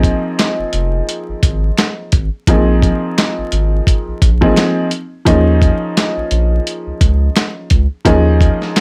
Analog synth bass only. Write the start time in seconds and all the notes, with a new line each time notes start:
Already playing: A#1
0.59 F1
0.74 F1
1.29 G#1
1.43 G#1
2.13 G#1
2.48 A#1
3.38 G#1
3.53 G#1
4.08 A#1
4.22 A#1
5.27 D#2
6.17 A#1
6.32 A#1
6.87 C#2
7.01 C#2
7.71 C#2
8.06 D#2